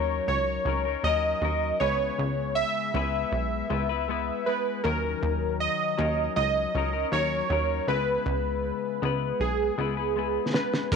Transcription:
0.00 0.21 D#2 loud
0.00 0.65 F#3 medium
0.00 0.67 C#4 medium
0.00 0.67 D#4 medium
0.00 0.68 A#4 medium
0.00 0.27 C#5 loud
0.28 0.58 C#2 medium
0.28 1.07 C#5 medium
0.65 0.96 C#2 medium
0.65 0.85 F#3 medium
0.65 0.86 C#4 medium
0.65 0.86 D#4 medium
0.65 0.84 A#4 medium
0.85 1.04 C#4 soft
0.85 1.05 D#4 medium
0.85 1.04 A#4 medium
1.03 1.34 D#2 medium
1.03 1.40 F#3 medium
1.03 1.41 C#4 medium
1.03 1.42 D#4 medium
1.03 1.43 A#4 medium
1.03 1.82 D#5 loud
1.42 1.72 D#2 medium
1.42 1.80 F#3 medium
1.42 1.80 C#4 medium
1.42 1.81 D#4 medium
1.42 1.81 A#4 medium
1.80 2.11 C#2 medium
1.80 2.94 C#3 medium
1.80 2.93 G#3 medium
1.80 2.94 B3 medium
1.80 2.95 E4 medium
1.80 2.95 B4 medium
1.80 2.58 C#5 loud
2.19 2.64 C#2 loud
2.55 4.51 E5 loud
2.94 3.25 C#2 loud
2.94 3.68 G#3 medium
2.94 3.70 B3 medium
2.94 3.71 E4 medium
2.94 3.71 B4 medium
3.32 3.62 B1 loud
3.70 4.31 C#2 medium
3.70 3.89 G#3 medium
3.70 3.90 B3 medium
3.70 3.90 E4 medium
3.70 3.88 B4 medium
3.89 4.08 B3 soft
3.89 4.09 E4 medium
3.89 4.08 B4 medium
4.08 4.45 G#3 medium
4.08 4.46 B3 medium
4.08 4.47 E4 medium
4.08 4.47 B4 medium
4.46 4.84 G#3 medium
4.46 4.85 B3 medium
4.46 4.85 E4 medium
4.46 4.82 B4 medium
4.46 4.86 B4 medium
4.84 5.15 D#2 loud
4.84 5.98 D#3 medium
4.84 5.96 F#3 medium
4.84 5.99 C#4 medium
4.84 5.99 D#4 medium
4.84 5.56 A#4 medium
4.84 5.99 A#4 medium
5.23 5.68 D#2 medium
5.60 6.32 D#5 loud
5.98 6.29 D#2 loud
5.98 6.73 F#3 medium
5.98 6.75 C#4 medium
5.98 6.75 D#4 medium
5.98 6.75 A#4 medium
6.36 6.67 C#2 loud
6.36 7.08 D#5 loud
6.75 7.05 C#2 medium
6.75 6.93 F#3 medium
6.75 6.94 C#4 medium
6.75 6.94 D#4 medium
6.75 6.92 A#4 medium
6.93 7.12 C#4 soft
6.93 7.13 D#4 soft
6.93 7.12 A#4 medium
7.12 7.42 D#2 medium
7.12 7.49 F#3 medium
7.12 7.50 C#4 medium
7.12 7.50 D#4 medium
7.12 7.51 A#4 medium
7.12 7.91 C#5 loud
7.50 7.80 D#2 medium
7.50 7.88 F#3 medium
7.50 7.88 C#4 medium
7.50 7.89 D#4 medium
7.50 7.89 A#4 medium
7.88 8.18 C#2 medium
7.88 9.02 C#3 medium
7.88 9.01 G#3 medium
7.88 9.02 B3 medium
7.88 9.03 E4 medium
7.88 9.45 B4 loud
7.88 9.03 B4 medium
8.26 8.72 C#2 loud
9.02 9.33 C#2 loud
9.02 9.77 G#3 medium
9.02 9.77 B3 medium
9.02 9.78 E4 medium
9.02 9.79 B4 medium
9.40 9.70 B1 loud
9.40 10.58 G#4 medium
9.78 10.39 C#2 medium
9.78 9.97 G#3 medium
9.78 9.97 B3 medium
9.78 9.97 E4 medium
9.78 9.96 B4 medium
9.97 10.16 B3 soft
9.97 10.17 E4 soft
9.97 10.16 B4 medium
10.16 10.52 G#3 medium
10.16 10.53 B3 medium
10.16 10.54 E4 medium
10.16 10.55 B4 medium
10.53 10.92 G#3 medium
10.53 10.92 B3 medium
10.53 10.93 E4 medium
10.53 10.89 B4 medium
10.53 10.93 B4 medium
10.53 snare medium
10.74 snare loud
10.91 10.96 D#2 medium
10.91 10.96 D#3 medium
10.91 10.96 F#3 medium
10.91 10.96 C#4 medium
10.91 10.96 F#4 medium
10.91 10.96 A#4 medium
10.91 kick loud
10.91 closed hi-hat medium
10.91 tambourine soft

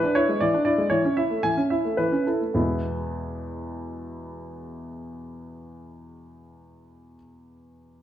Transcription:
0.00 0.17 D4 soft
0.00 0.16 B4 medium
0.15 0.29 E4 soft
0.15 0.41 C#5 medium
0.29 0.42 G#3 soft
0.41 0.54 E3 soft
0.41 0.63 D5 medium
0.54 0.67 D4 soft
0.65 0.79 E4 soft
0.65 0.91 D5 medium
0.78 0.91 G#3 soft
0.90 1.04 E3 soft
0.90 1.14 C#5 medium
1.05 1.19 C#4 soft
1.17 1.32 E4 soft
1.17 1.41 E5 soft
1.30 1.45 A3 soft
1.43 1.57 E3 soft
1.43 1.60 G#5 medium
1.57 1.72 C#4 soft
1.70 1.86 E4 soft
1.70 1.99 E5 soft
1.85 2.00 A3 soft
1.97 2.12 E3 soft
1.97 2.27 B4 soft
2.12 2.28 C#4 soft
2.26 2.43 E4 soft
2.26 2.53 A4 soft
2.41 2.56 A3 soft
2.54 7.15 E2 soft
2.54 7.15 B2 soft
2.54 7.16 G#3 soft
2.54 7.16 B3 soft
2.54 7.16 E4 soft

